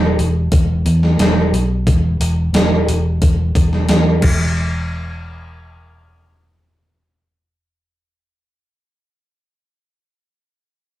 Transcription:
Already playing: E1
0.19 E1, open hi-hat
0.52 E1, kick, open hi-hat
0.85 E2, open hi-hat
1.03 snare
1.18 E1, snare, open hi-hat
1.52 B1, open hi-hat
1.87 E1, kick, open hi-hat
2.20 E1, open hi-hat
2.53 E1, snare, open hi-hat
2.87 E1, open hi-hat
3.22 E1, kick, open hi-hat
3.55 E1, kick, open hi-hat
3.73 snare
3.89 E2, snare, open hi-hat
4.22 E1, kick, crash

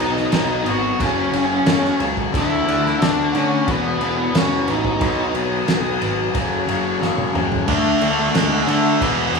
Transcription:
Already playing: B2 F#3 B4 D#5 F#5 D#6
0.00 B1 B3 D#4 D#5, crash
0.17 snare
0.31 B1 B2 F#3 B3, snare, crash
0.65 G#1 B2 F#3 B3 F#4, crash
0.70 F#5
0.99 F#1 F#2 C#3 F#3 C#4 A4 C#5 C#6, kick, crash
1.05 C#5
1.33 F#1 F#2 C#3 F#3, crash
1.66 F#1 F#2 C#3 F#3, snare, crash
1.85 snare
1.99 C#2 F#2 C#3 F#3, crash
2.17 kick
2.32 D2 D3 A3 D4 E4 A4, kick, crash
2.36 E5 A5
2.66 D2 D3 A3 D4, crash
2.86 snare
2.99 D2 D3 A3 D4 D5, snare, crash
3.32 D3 A3 D4, crash
3.37 C#4 C#5
3.65 E1 E2 B2 E3 B4 G#5, kick, crash
3.71 B3 B4
3.99 E1 E2 B2 E3, crash
4.34 E1 E2 B2 E3, snare, crash
4.38 C#4 C#5
4.66 A1 E2 B2 E3, crash
4.70 D#4 D#5
4.84 kick
4.99 B1 B2 F#3 B3 D#5 D#6, kick, crash
5.31 B1 B2 F#3 B3, crash
5.65 B1 B2 F#3 B3, snare, crash
5.98 G#1 B2 F#3 B3, crash
6.33 F#1 F#2 C#3 F#3 A4 C#5 C#6, kick, crash
6.66 F#1 F#2 C#3 F#3, crash
6.99 F#1 F#2 C#3 F#3, snare
7.18 high tom
7.33 F#1 F#2 C#3 F#3, mid tom
7.52 floor tom
7.66 D2 D3 A3 D4 D5 F#5 D6, kick, crash
7.70 A3 A4
8.01 D2 D3 A3 D4, crash
8.34 D2 D3 G#3 A3 D4 G#4, snare, crash
8.61 G#4
8.67 D3 A3 D4 A4, crash
9.00 E1 E2 B2 E3 B3 B4 G#5 E6, kick, crash
9.33 E1 E2 B2 E3, crash

